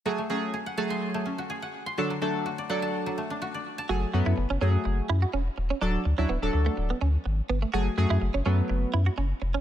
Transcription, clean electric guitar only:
X:1
M:4/4
L:1/16
Q:1/4=125
K:F#m
V:1 name="Clean electric guitar"
z16 | z16 | F z2 E z C C z3 E F C z2 C | D z2 C B, z2 A, z B, C z3 B, A, |
F z2 E z C C z3 E F C z2 C |]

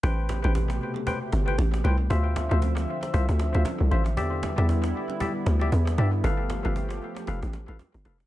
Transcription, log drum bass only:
X:1
M:4/4
L:1/16
Q:"Swing 16ths" 1/4=116
K:Am
V:1 name="Log drum bass" clef=bass
A,,,3 A,,,3 z4 G,,,2 A,,,2 C,,2 | D,,3 D,,3 z2 C,, D,,2 D,, z C,, A,,,2 | E,,3 E,,3 z4 D,,2 E,,2 G,,2 | G,,,3 G,,,3 z2 F,,, A,,,2 A,,, z G,,, F,,,2 |]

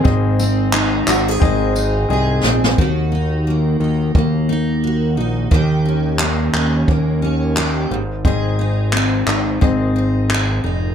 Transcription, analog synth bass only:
X:1
M:4/4
L:1/8
Q:"Swing 16ths" 1/4=88
K:Ebdor
V:1 name="Analog synth bass" clef=bass
A,,,3 A,,, A,,,2 C,, B,,, | E,,3 E,, E,,3 B,,, | E,,3 E,, E,,3 A,,,- | A,,,3 A,,, A,,,3 F,,, |]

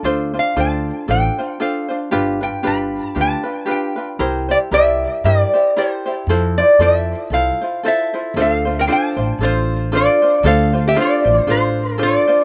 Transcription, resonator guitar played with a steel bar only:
X:1
M:4/4
L:1/16
Q:"Swing" 1/4=116
K:F
V:1 name="Resonator guitar played with a steel bar"
z2 f2 a4 g4 f3 z | z2 g2 =b4 a4 g3 z | z2 d2 e4 d4 c3 z | z2 d2 e4 f4 [Ae]4 |
[K:Dm] [Af]3 [Bg] [ca]4 [Fc]4 [Fd]4 | [Af]3 [Ge] [Fd]4 [Fc]4 [Fd]4 |]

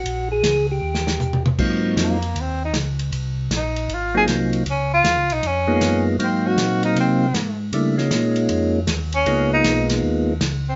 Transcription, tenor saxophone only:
X:1
M:4/4
L:1/8
Q:"Swing" 1/4=156
K:Abmix
V:1 name="Tenor saxophone"
z8 | z2 B,2 C E z2 | z2 E2 F A z2 | D F2 E D3 z |
C G2 E C3 z | z6 z D- | D E2 z4 C |]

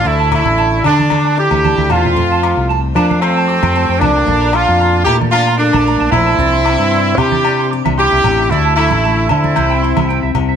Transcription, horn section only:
X:1
M:4/4
L:1/8
Q:"Swing 16ths" 1/4=114
K:F
V:1 name="Horn section"
E E2 D2 G2 F- | F2 z D C3 D- | D F2 G F D2 E- | E3 G2 z G2 |
E E2 E4 z |]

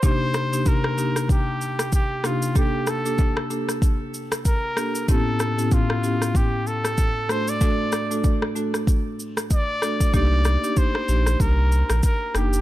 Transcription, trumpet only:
X:1
M:4/4
L:1/16
Q:"Swing 16ths" 1/4=95
K:Cdor
V:1 name="Trumpet"
c4 B4 G4 G2 F2 | G2 A4 z6 B4 | A4 F4 G2 A4 c d- | d4- d z6 z d4 |
d4 c4 B4 B2 G2 |]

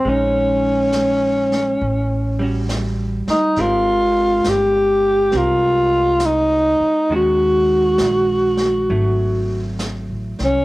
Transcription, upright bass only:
X:1
M:4/4
L:1/8
Q:"Swing" 1/4=68
K:Ablyd
V:1 name="Upright bass" clef=bass
B,,,4 =A,,,3 z | A,,,2 G,,,2 C,,3 z | E,,2 B,,,2 A,,,2- (3A,,, =A,,, C,, |]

